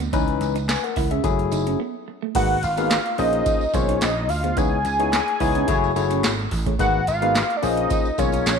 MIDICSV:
0, 0, Header, 1, 7, 480
1, 0, Start_track
1, 0, Tempo, 555556
1, 111, Time_signature, 4, 2, 24, 8
1, 7424, End_track
2, 0, Start_track
2, 0, Title_t, "Analog synth lead"
2, 0, Program_c, 0, 81
2, 2035, Note_on_c, 0, 78, 107
2, 2274, Note_on_c, 0, 77, 107
2, 2286, Note_off_c, 0, 78, 0
2, 2748, Note_off_c, 0, 77, 0
2, 2753, Note_on_c, 0, 75, 101
2, 3233, Note_on_c, 0, 73, 95
2, 3246, Note_off_c, 0, 75, 0
2, 3475, Note_on_c, 0, 75, 106
2, 3488, Note_off_c, 0, 73, 0
2, 3712, Note_on_c, 0, 77, 109
2, 3725, Note_off_c, 0, 75, 0
2, 3953, Note_on_c, 0, 80, 125
2, 3965, Note_off_c, 0, 77, 0
2, 5632, Note_off_c, 0, 80, 0
2, 5876, Note_on_c, 0, 78, 117
2, 6097, Note_off_c, 0, 78, 0
2, 6117, Note_on_c, 0, 77, 124
2, 6537, Note_on_c, 0, 74, 78
2, 6550, Note_off_c, 0, 77, 0
2, 6598, Note_on_c, 0, 75, 118
2, 6611, Note_off_c, 0, 74, 0
2, 7076, Note_on_c, 0, 73, 106
2, 7089, Note_off_c, 0, 75, 0
2, 7424, Note_off_c, 0, 73, 0
2, 7424, End_track
3, 0, Start_track
3, 0, Title_t, "Tine electric piano"
3, 0, Program_c, 1, 4
3, 111, Note_on_c, 1, 52, 90
3, 112, Note_on_c, 1, 61, 82
3, 115, Note_on_c, 1, 63, 82
3, 118, Note_on_c, 1, 71, 100
3, 472, Note_off_c, 1, 52, 0
3, 473, Note_off_c, 1, 61, 0
3, 474, Note_off_c, 1, 63, 0
3, 475, Note_off_c, 1, 71, 0
3, 590, Note_on_c, 1, 80, 68
3, 597, Note_on_c, 1, 71, 59
3, 711, Note_off_c, 1, 80, 0
3, 715, Note_off_c, 1, 71, 0
3, 723, Note_on_c, 1, 78, 68
3, 726, Note_on_c, 1, 70, 56
3, 948, Note_off_c, 1, 78, 0
3, 950, Note_off_c, 1, 70, 0
3, 958, Note_on_c, 1, 76, 66
3, 965, Note_on_c, 1, 68, 57
3, 1064, Note_off_c, 1, 68, 0
3, 1066, Note_on_c, 1, 54, 86
3, 1069, Note_on_c, 1, 57, 83
3, 1072, Note_on_c, 1, 64, 78
3, 1075, Note_on_c, 1, 68, 92
3, 1186, Note_off_c, 1, 76, 0
3, 1541, Note_off_c, 1, 54, 0
3, 1543, Note_off_c, 1, 57, 0
3, 1544, Note_off_c, 1, 64, 0
3, 1546, Note_off_c, 1, 68, 0
3, 2030, Note_on_c, 1, 58, 77
3, 2032, Note_on_c, 1, 63, 70
3, 2032, Note_on_c, 1, 66, 70
3, 2036, Note_on_c, 1, 68, 69
3, 2037, Note_on_c, 1, 71, 87
3, 2211, Note_off_c, 1, 58, 0
3, 2212, Note_off_c, 1, 63, 0
3, 2212, Note_off_c, 1, 66, 0
3, 2214, Note_off_c, 1, 68, 0
3, 2215, Note_off_c, 1, 71, 0
3, 2396, Note_on_c, 1, 58, 78
3, 2396, Note_on_c, 1, 63, 69
3, 2398, Note_on_c, 1, 66, 67
3, 2401, Note_on_c, 1, 68, 71
3, 2404, Note_on_c, 1, 71, 83
3, 2570, Note_off_c, 1, 58, 0
3, 2570, Note_off_c, 1, 63, 0
3, 2571, Note_off_c, 1, 66, 0
3, 2573, Note_off_c, 1, 68, 0
3, 2574, Note_off_c, 1, 71, 0
3, 2748, Note_on_c, 1, 58, 78
3, 2749, Note_on_c, 1, 61, 73
3, 2750, Note_on_c, 1, 65, 69
3, 2752, Note_on_c, 1, 68, 75
3, 2753, Note_on_c, 1, 72, 89
3, 3139, Note_off_c, 1, 58, 0
3, 3139, Note_off_c, 1, 61, 0
3, 3140, Note_off_c, 1, 65, 0
3, 3141, Note_off_c, 1, 68, 0
3, 3142, Note_off_c, 1, 72, 0
3, 3230, Note_on_c, 1, 58, 74
3, 3230, Note_on_c, 1, 61, 72
3, 3232, Note_on_c, 1, 65, 68
3, 3235, Note_on_c, 1, 68, 73
3, 3237, Note_on_c, 1, 72, 86
3, 3529, Note_off_c, 1, 58, 0
3, 3529, Note_off_c, 1, 61, 0
3, 3530, Note_off_c, 1, 65, 0
3, 3531, Note_off_c, 1, 68, 0
3, 3532, Note_off_c, 1, 72, 0
3, 3835, Note_on_c, 1, 68, 75
3, 3841, Note_on_c, 1, 72, 85
3, 3892, Note_off_c, 1, 68, 0
3, 3895, Note_off_c, 1, 72, 0
3, 3946, Note_on_c, 1, 59, 80
3, 3949, Note_on_c, 1, 63, 67
3, 3951, Note_on_c, 1, 64, 70
3, 3953, Note_on_c, 1, 68, 73
3, 3954, Note_on_c, 1, 73, 89
3, 4129, Note_off_c, 1, 59, 0
3, 4131, Note_off_c, 1, 63, 0
3, 4132, Note_off_c, 1, 64, 0
3, 4133, Note_off_c, 1, 68, 0
3, 4133, Note_off_c, 1, 73, 0
3, 4315, Note_on_c, 1, 59, 71
3, 4315, Note_on_c, 1, 63, 70
3, 4317, Note_on_c, 1, 64, 70
3, 4320, Note_on_c, 1, 68, 71
3, 4321, Note_on_c, 1, 73, 85
3, 4490, Note_off_c, 1, 59, 0
3, 4490, Note_off_c, 1, 63, 0
3, 4491, Note_off_c, 1, 64, 0
3, 4492, Note_off_c, 1, 68, 0
3, 4493, Note_off_c, 1, 73, 0
3, 4668, Note_on_c, 1, 59, 96
3, 4669, Note_on_c, 1, 63, 78
3, 4671, Note_on_c, 1, 64, 83
3, 4673, Note_on_c, 1, 68, 88
3, 4674, Note_on_c, 1, 73, 104
3, 4896, Note_off_c, 1, 64, 0
3, 4901, Note_off_c, 1, 68, 0
3, 4904, Note_off_c, 1, 73, 0
3, 4906, Note_off_c, 1, 59, 0
3, 4906, Note_off_c, 1, 63, 0
3, 4907, Note_on_c, 1, 57, 95
3, 4907, Note_on_c, 1, 64, 91
3, 4911, Note_on_c, 1, 68, 88
3, 4912, Note_on_c, 1, 66, 92
3, 4914, Note_on_c, 1, 73, 103
3, 5103, Note_off_c, 1, 64, 0
3, 5104, Note_off_c, 1, 57, 0
3, 5106, Note_off_c, 1, 66, 0
3, 5106, Note_off_c, 1, 68, 0
3, 5107, Note_off_c, 1, 73, 0
3, 5149, Note_on_c, 1, 57, 94
3, 5150, Note_on_c, 1, 64, 87
3, 5153, Note_on_c, 1, 66, 83
3, 5155, Note_on_c, 1, 68, 83
3, 5155, Note_on_c, 1, 73, 107
3, 5448, Note_off_c, 1, 57, 0
3, 5449, Note_off_c, 1, 64, 0
3, 5450, Note_off_c, 1, 66, 0
3, 5452, Note_off_c, 1, 68, 0
3, 5452, Note_off_c, 1, 73, 0
3, 5757, Note_on_c, 1, 68, 75
3, 5764, Note_on_c, 1, 73, 86
3, 5813, Note_off_c, 1, 68, 0
3, 5816, Note_off_c, 1, 73, 0
3, 5864, Note_on_c, 1, 58, 77
3, 5867, Note_on_c, 1, 63, 68
3, 5868, Note_on_c, 1, 66, 71
3, 5870, Note_on_c, 1, 68, 71
3, 5871, Note_on_c, 1, 71, 83
3, 6048, Note_off_c, 1, 58, 0
3, 6050, Note_off_c, 1, 63, 0
3, 6050, Note_off_c, 1, 66, 0
3, 6051, Note_off_c, 1, 68, 0
3, 6052, Note_off_c, 1, 71, 0
3, 6234, Note_on_c, 1, 58, 78
3, 6235, Note_on_c, 1, 63, 68
3, 6238, Note_on_c, 1, 66, 71
3, 6240, Note_on_c, 1, 68, 69
3, 6241, Note_on_c, 1, 71, 84
3, 6410, Note_off_c, 1, 58, 0
3, 6410, Note_off_c, 1, 63, 0
3, 6411, Note_off_c, 1, 66, 0
3, 6412, Note_off_c, 1, 68, 0
3, 6413, Note_off_c, 1, 71, 0
3, 6585, Note_on_c, 1, 58, 82
3, 6588, Note_on_c, 1, 61, 73
3, 6589, Note_on_c, 1, 65, 75
3, 6591, Note_on_c, 1, 68, 74
3, 6593, Note_on_c, 1, 72, 90
3, 6977, Note_off_c, 1, 58, 0
3, 6979, Note_off_c, 1, 61, 0
3, 6979, Note_off_c, 1, 65, 0
3, 6981, Note_off_c, 1, 68, 0
3, 6982, Note_off_c, 1, 72, 0
3, 7069, Note_on_c, 1, 58, 75
3, 7071, Note_on_c, 1, 61, 74
3, 7071, Note_on_c, 1, 65, 71
3, 7073, Note_on_c, 1, 68, 73
3, 7075, Note_on_c, 1, 73, 88
3, 7368, Note_off_c, 1, 58, 0
3, 7370, Note_off_c, 1, 61, 0
3, 7370, Note_off_c, 1, 65, 0
3, 7371, Note_off_c, 1, 68, 0
3, 7372, Note_off_c, 1, 73, 0
3, 7424, End_track
4, 0, Start_track
4, 0, Title_t, "Clean electric guitar"
4, 0, Program_c, 2, 27
4, 1, Note_on_c, 2, 59, 70
4, 84, Note_off_c, 2, 59, 0
4, 112, Note_on_c, 2, 61, 91
4, 206, Note_off_c, 2, 61, 0
4, 482, Note_on_c, 2, 63, 85
4, 564, Note_off_c, 2, 63, 0
4, 838, Note_on_c, 2, 64, 84
4, 930, Note_off_c, 2, 64, 0
4, 963, Note_on_c, 2, 61, 77
4, 1045, Note_off_c, 2, 61, 0
4, 1313, Note_on_c, 2, 63, 63
4, 1407, Note_off_c, 2, 63, 0
4, 1442, Note_on_c, 2, 61, 75
4, 1525, Note_off_c, 2, 61, 0
4, 1554, Note_on_c, 2, 59, 80
4, 1647, Note_off_c, 2, 59, 0
4, 1922, Note_on_c, 2, 57, 73
4, 2004, Note_off_c, 2, 57, 0
4, 2033, Note_on_c, 2, 56, 99
4, 2127, Note_off_c, 2, 56, 0
4, 2403, Note_on_c, 2, 59, 84
4, 2485, Note_off_c, 2, 59, 0
4, 2756, Note_on_c, 2, 61, 76
4, 2849, Note_off_c, 2, 61, 0
4, 3230, Note_on_c, 2, 65, 73
4, 3325, Note_off_c, 2, 65, 0
4, 3360, Note_on_c, 2, 63, 82
4, 3444, Note_off_c, 2, 63, 0
4, 3472, Note_on_c, 2, 61, 84
4, 3567, Note_off_c, 2, 61, 0
4, 3836, Note_on_c, 2, 59, 70
4, 3921, Note_off_c, 2, 59, 0
4, 3951, Note_on_c, 2, 61, 95
4, 4046, Note_off_c, 2, 61, 0
4, 4322, Note_on_c, 2, 63, 85
4, 4404, Note_off_c, 2, 63, 0
4, 4672, Note_on_c, 2, 64, 86
4, 4766, Note_off_c, 2, 64, 0
4, 4799, Note_on_c, 2, 61, 80
4, 4883, Note_off_c, 2, 61, 0
4, 5151, Note_on_c, 2, 63, 69
4, 5246, Note_off_c, 2, 63, 0
4, 5278, Note_on_c, 2, 61, 84
4, 5362, Note_off_c, 2, 61, 0
4, 5389, Note_on_c, 2, 59, 82
4, 5485, Note_off_c, 2, 59, 0
4, 5758, Note_on_c, 2, 57, 79
4, 5842, Note_off_c, 2, 57, 0
4, 5875, Note_on_c, 2, 56, 104
4, 5968, Note_off_c, 2, 56, 0
4, 6240, Note_on_c, 2, 59, 86
4, 6324, Note_off_c, 2, 59, 0
4, 6594, Note_on_c, 2, 61, 80
4, 6688, Note_off_c, 2, 61, 0
4, 7074, Note_on_c, 2, 65, 80
4, 7168, Note_off_c, 2, 65, 0
4, 7201, Note_on_c, 2, 63, 80
4, 7284, Note_off_c, 2, 63, 0
4, 7314, Note_on_c, 2, 61, 86
4, 7408, Note_off_c, 2, 61, 0
4, 7424, End_track
5, 0, Start_track
5, 0, Title_t, "Slap bass"
5, 0, Program_c, 3, 36
5, 112, Note_on_c, 3, 37, 91
5, 301, Note_off_c, 3, 37, 0
5, 353, Note_on_c, 3, 37, 99
5, 642, Note_off_c, 3, 37, 0
5, 832, Note_on_c, 3, 37, 85
5, 1021, Note_off_c, 3, 37, 0
5, 1071, Note_on_c, 3, 30, 107
5, 1261, Note_off_c, 3, 30, 0
5, 1313, Note_on_c, 3, 30, 93
5, 1501, Note_off_c, 3, 30, 0
5, 2030, Note_on_c, 3, 32, 101
5, 2220, Note_off_c, 3, 32, 0
5, 2274, Note_on_c, 3, 32, 103
5, 2563, Note_off_c, 3, 32, 0
5, 2753, Note_on_c, 3, 34, 98
5, 2942, Note_off_c, 3, 34, 0
5, 3229, Note_on_c, 3, 35, 87
5, 3420, Note_off_c, 3, 35, 0
5, 3471, Note_on_c, 3, 34, 90
5, 3710, Note_off_c, 3, 34, 0
5, 3710, Note_on_c, 3, 38, 95
5, 3900, Note_off_c, 3, 38, 0
5, 3948, Note_on_c, 3, 37, 94
5, 4139, Note_off_c, 3, 37, 0
5, 4187, Note_on_c, 3, 37, 105
5, 4478, Note_off_c, 3, 37, 0
5, 4671, Note_on_c, 3, 37, 92
5, 4860, Note_off_c, 3, 37, 0
5, 4908, Note_on_c, 3, 30, 117
5, 5099, Note_off_c, 3, 30, 0
5, 5150, Note_on_c, 3, 30, 95
5, 5340, Note_off_c, 3, 30, 0
5, 5391, Note_on_c, 3, 32, 86
5, 5580, Note_off_c, 3, 32, 0
5, 5629, Note_on_c, 3, 33, 86
5, 5819, Note_off_c, 3, 33, 0
5, 5870, Note_on_c, 3, 32, 104
5, 6060, Note_off_c, 3, 32, 0
5, 6112, Note_on_c, 3, 32, 101
5, 6402, Note_off_c, 3, 32, 0
5, 6594, Note_on_c, 3, 34, 97
5, 6782, Note_off_c, 3, 34, 0
5, 7072, Note_on_c, 3, 35, 88
5, 7261, Note_off_c, 3, 35, 0
5, 7311, Note_on_c, 3, 34, 92
5, 7424, Note_off_c, 3, 34, 0
5, 7424, End_track
6, 0, Start_track
6, 0, Title_t, "Muted clean electric guitar strokes"
6, 353, Note_on_c, 9, 29, 45
6, 439, Note_off_c, 9, 29, 0
6, 596, Note_on_c, 9, 29, 44
6, 682, Note_off_c, 9, 29, 0
6, 1076, Note_on_c, 9, 29, 44
6, 1162, Note_off_c, 9, 29, 0
6, 1796, Note_on_c, 9, 29, 45
6, 1882, Note_off_c, 9, 29, 0
6, 2275, Note_on_c, 9, 29, 46
6, 2361, Note_off_c, 9, 29, 0
6, 2994, Note_on_c, 9, 29, 44
6, 3080, Note_off_c, 9, 29, 0
6, 3711, Note_on_c, 9, 29, 51
6, 3797, Note_off_c, 9, 29, 0
6, 4192, Note_on_c, 9, 29, 47
6, 4278, Note_off_c, 9, 29, 0
6, 4433, Note_on_c, 9, 29, 47
6, 4520, Note_off_c, 9, 29, 0
6, 4911, Note_on_c, 9, 29, 46
6, 4998, Note_off_c, 9, 29, 0
6, 5633, Note_on_c, 9, 29, 47
6, 5719, Note_off_c, 9, 29, 0
6, 6114, Note_on_c, 9, 29, 50
6, 6201, Note_off_c, 9, 29, 0
6, 6835, Note_on_c, 9, 29, 44
6, 6922, Note_off_c, 9, 29, 0
6, 7424, End_track
7, 0, Start_track
7, 0, Title_t, "Drums"
7, 0, Note_on_c, 9, 54, 36
7, 2, Note_on_c, 9, 42, 49
7, 86, Note_off_c, 9, 54, 0
7, 88, Note_off_c, 9, 42, 0
7, 111, Note_on_c, 9, 36, 115
7, 112, Note_on_c, 9, 42, 89
7, 118, Note_on_c, 9, 54, 54
7, 198, Note_off_c, 9, 36, 0
7, 199, Note_off_c, 9, 42, 0
7, 204, Note_off_c, 9, 54, 0
7, 239, Note_on_c, 9, 42, 34
7, 325, Note_off_c, 9, 42, 0
7, 353, Note_on_c, 9, 42, 74
7, 364, Note_on_c, 9, 54, 49
7, 439, Note_off_c, 9, 42, 0
7, 451, Note_off_c, 9, 54, 0
7, 480, Note_on_c, 9, 42, 53
7, 480, Note_on_c, 9, 54, 34
7, 566, Note_off_c, 9, 42, 0
7, 566, Note_off_c, 9, 54, 0
7, 595, Note_on_c, 9, 38, 105
7, 596, Note_on_c, 9, 54, 82
7, 597, Note_on_c, 9, 42, 77
7, 600, Note_on_c, 9, 39, 80
7, 681, Note_off_c, 9, 38, 0
7, 683, Note_off_c, 9, 42, 0
7, 683, Note_off_c, 9, 54, 0
7, 686, Note_off_c, 9, 39, 0
7, 726, Note_on_c, 9, 42, 35
7, 812, Note_off_c, 9, 42, 0
7, 831, Note_on_c, 9, 46, 70
7, 833, Note_on_c, 9, 36, 90
7, 843, Note_on_c, 9, 54, 45
7, 917, Note_off_c, 9, 46, 0
7, 919, Note_off_c, 9, 36, 0
7, 929, Note_off_c, 9, 54, 0
7, 958, Note_on_c, 9, 42, 53
7, 1045, Note_off_c, 9, 42, 0
7, 1070, Note_on_c, 9, 42, 99
7, 1070, Note_on_c, 9, 54, 54
7, 1071, Note_on_c, 9, 36, 114
7, 1156, Note_off_c, 9, 54, 0
7, 1157, Note_off_c, 9, 36, 0
7, 1157, Note_off_c, 9, 42, 0
7, 1202, Note_on_c, 9, 42, 37
7, 1289, Note_off_c, 9, 42, 0
7, 1310, Note_on_c, 9, 54, 58
7, 1317, Note_on_c, 9, 42, 77
7, 1396, Note_off_c, 9, 54, 0
7, 1403, Note_off_c, 9, 42, 0
7, 1440, Note_on_c, 9, 42, 59
7, 1527, Note_off_c, 9, 42, 0
7, 2029, Note_on_c, 9, 42, 89
7, 2030, Note_on_c, 9, 36, 127
7, 2030, Note_on_c, 9, 49, 100
7, 2036, Note_on_c, 9, 54, 54
7, 2115, Note_off_c, 9, 42, 0
7, 2116, Note_off_c, 9, 49, 0
7, 2117, Note_off_c, 9, 36, 0
7, 2122, Note_off_c, 9, 54, 0
7, 2270, Note_on_c, 9, 42, 78
7, 2277, Note_on_c, 9, 54, 53
7, 2357, Note_off_c, 9, 42, 0
7, 2363, Note_off_c, 9, 54, 0
7, 2395, Note_on_c, 9, 54, 38
7, 2398, Note_on_c, 9, 42, 56
7, 2481, Note_off_c, 9, 54, 0
7, 2485, Note_off_c, 9, 42, 0
7, 2509, Note_on_c, 9, 54, 85
7, 2512, Note_on_c, 9, 38, 113
7, 2514, Note_on_c, 9, 42, 87
7, 2516, Note_on_c, 9, 39, 89
7, 2595, Note_off_c, 9, 54, 0
7, 2598, Note_off_c, 9, 38, 0
7, 2600, Note_off_c, 9, 42, 0
7, 2603, Note_off_c, 9, 39, 0
7, 2641, Note_on_c, 9, 42, 39
7, 2728, Note_off_c, 9, 42, 0
7, 2748, Note_on_c, 9, 46, 74
7, 2758, Note_on_c, 9, 54, 46
7, 2835, Note_off_c, 9, 46, 0
7, 2844, Note_off_c, 9, 54, 0
7, 2875, Note_on_c, 9, 42, 54
7, 2962, Note_off_c, 9, 42, 0
7, 2989, Note_on_c, 9, 42, 105
7, 2989, Note_on_c, 9, 54, 58
7, 2990, Note_on_c, 9, 36, 122
7, 3075, Note_off_c, 9, 42, 0
7, 3075, Note_off_c, 9, 54, 0
7, 3076, Note_off_c, 9, 36, 0
7, 3120, Note_on_c, 9, 54, 37
7, 3206, Note_off_c, 9, 54, 0
7, 3227, Note_on_c, 9, 54, 62
7, 3229, Note_on_c, 9, 36, 105
7, 3235, Note_on_c, 9, 42, 78
7, 3314, Note_off_c, 9, 54, 0
7, 3316, Note_off_c, 9, 36, 0
7, 3321, Note_off_c, 9, 42, 0
7, 3360, Note_on_c, 9, 42, 63
7, 3446, Note_off_c, 9, 42, 0
7, 3466, Note_on_c, 9, 42, 87
7, 3472, Note_on_c, 9, 38, 124
7, 3472, Note_on_c, 9, 54, 101
7, 3477, Note_on_c, 9, 39, 100
7, 3552, Note_off_c, 9, 42, 0
7, 3558, Note_off_c, 9, 38, 0
7, 3558, Note_off_c, 9, 54, 0
7, 3563, Note_off_c, 9, 39, 0
7, 3706, Note_on_c, 9, 46, 78
7, 3717, Note_on_c, 9, 54, 46
7, 3793, Note_off_c, 9, 46, 0
7, 3803, Note_off_c, 9, 54, 0
7, 3835, Note_on_c, 9, 42, 51
7, 3922, Note_off_c, 9, 42, 0
7, 3946, Note_on_c, 9, 42, 86
7, 3948, Note_on_c, 9, 36, 122
7, 3957, Note_on_c, 9, 54, 53
7, 4033, Note_off_c, 9, 42, 0
7, 4034, Note_off_c, 9, 36, 0
7, 4043, Note_off_c, 9, 54, 0
7, 4188, Note_on_c, 9, 42, 77
7, 4198, Note_on_c, 9, 54, 50
7, 4275, Note_off_c, 9, 42, 0
7, 4284, Note_off_c, 9, 54, 0
7, 4317, Note_on_c, 9, 42, 54
7, 4403, Note_off_c, 9, 42, 0
7, 4432, Note_on_c, 9, 38, 104
7, 4434, Note_on_c, 9, 42, 89
7, 4435, Note_on_c, 9, 54, 80
7, 4437, Note_on_c, 9, 39, 88
7, 4518, Note_off_c, 9, 38, 0
7, 4520, Note_off_c, 9, 42, 0
7, 4522, Note_off_c, 9, 54, 0
7, 4523, Note_off_c, 9, 39, 0
7, 4561, Note_on_c, 9, 42, 38
7, 4648, Note_off_c, 9, 42, 0
7, 4667, Note_on_c, 9, 46, 74
7, 4670, Note_on_c, 9, 36, 92
7, 4678, Note_on_c, 9, 54, 47
7, 4754, Note_off_c, 9, 46, 0
7, 4756, Note_off_c, 9, 36, 0
7, 4765, Note_off_c, 9, 54, 0
7, 4797, Note_on_c, 9, 42, 53
7, 4883, Note_off_c, 9, 42, 0
7, 4906, Note_on_c, 9, 42, 109
7, 4908, Note_on_c, 9, 54, 54
7, 4909, Note_on_c, 9, 36, 122
7, 4993, Note_off_c, 9, 42, 0
7, 4995, Note_off_c, 9, 36, 0
7, 4995, Note_off_c, 9, 54, 0
7, 5045, Note_on_c, 9, 54, 36
7, 5131, Note_off_c, 9, 54, 0
7, 5150, Note_on_c, 9, 54, 60
7, 5153, Note_on_c, 9, 42, 77
7, 5237, Note_off_c, 9, 54, 0
7, 5239, Note_off_c, 9, 42, 0
7, 5274, Note_on_c, 9, 54, 39
7, 5276, Note_on_c, 9, 42, 62
7, 5360, Note_off_c, 9, 54, 0
7, 5363, Note_off_c, 9, 42, 0
7, 5386, Note_on_c, 9, 42, 87
7, 5391, Note_on_c, 9, 54, 109
7, 5392, Note_on_c, 9, 38, 124
7, 5397, Note_on_c, 9, 39, 97
7, 5472, Note_off_c, 9, 42, 0
7, 5478, Note_off_c, 9, 54, 0
7, 5479, Note_off_c, 9, 38, 0
7, 5483, Note_off_c, 9, 39, 0
7, 5627, Note_on_c, 9, 46, 77
7, 5629, Note_on_c, 9, 36, 91
7, 5639, Note_on_c, 9, 54, 49
7, 5714, Note_off_c, 9, 46, 0
7, 5715, Note_off_c, 9, 36, 0
7, 5726, Note_off_c, 9, 54, 0
7, 5755, Note_on_c, 9, 36, 98
7, 5758, Note_on_c, 9, 42, 48
7, 5842, Note_off_c, 9, 36, 0
7, 5844, Note_off_c, 9, 42, 0
7, 5870, Note_on_c, 9, 36, 127
7, 5870, Note_on_c, 9, 42, 91
7, 5879, Note_on_c, 9, 54, 56
7, 5956, Note_off_c, 9, 42, 0
7, 5957, Note_off_c, 9, 36, 0
7, 5965, Note_off_c, 9, 54, 0
7, 6111, Note_on_c, 9, 42, 73
7, 6119, Note_on_c, 9, 54, 53
7, 6197, Note_off_c, 9, 42, 0
7, 6205, Note_off_c, 9, 54, 0
7, 6240, Note_on_c, 9, 42, 54
7, 6326, Note_off_c, 9, 42, 0
7, 6353, Note_on_c, 9, 54, 80
7, 6354, Note_on_c, 9, 38, 109
7, 6356, Note_on_c, 9, 42, 88
7, 6359, Note_on_c, 9, 39, 89
7, 6439, Note_off_c, 9, 54, 0
7, 6440, Note_off_c, 9, 38, 0
7, 6442, Note_off_c, 9, 42, 0
7, 6445, Note_off_c, 9, 39, 0
7, 6482, Note_on_c, 9, 42, 38
7, 6569, Note_off_c, 9, 42, 0
7, 6589, Note_on_c, 9, 46, 72
7, 6594, Note_on_c, 9, 54, 48
7, 6676, Note_off_c, 9, 46, 0
7, 6681, Note_off_c, 9, 54, 0
7, 6717, Note_on_c, 9, 42, 56
7, 6803, Note_off_c, 9, 42, 0
7, 6825, Note_on_c, 9, 54, 57
7, 6830, Note_on_c, 9, 42, 100
7, 6831, Note_on_c, 9, 36, 127
7, 6911, Note_off_c, 9, 54, 0
7, 6916, Note_off_c, 9, 42, 0
7, 6917, Note_off_c, 9, 36, 0
7, 6958, Note_on_c, 9, 54, 37
7, 7045, Note_off_c, 9, 54, 0
7, 7067, Note_on_c, 9, 54, 65
7, 7071, Note_on_c, 9, 36, 100
7, 7075, Note_on_c, 9, 42, 82
7, 7154, Note_off_c, 9, 54, 0
7, 7157, Note_off_c, 9, 36, 0
7, 7162, Note_off_c, 9, 42, 0
7, 7190, Note_on_c, 9, 54, 38
7, 7202, Note_on_c, 9, 42, 63
7, 7277, Note_off_c, 9, 54, 0
7, 7288, Note_off_c, 9, 42, 0
7, 7310, Note_on_c, 9, 54, 106
7, 7311, Note_on_c, 9, 42, 89
7, 7317, Note_on_c, 9, 38, 123
7, 7322, Note_on_c, 9, 39, 106
7, 7396, Note_off_c, 9, 54, 0
7, 7398, Note_off_c, 9, 42, 0
7, 7404, Note_off_c, 9, 38, 0
7, 7409, Note_off_c, 9, 39, 0
7, 7424, End_track
0, 0, End_of_file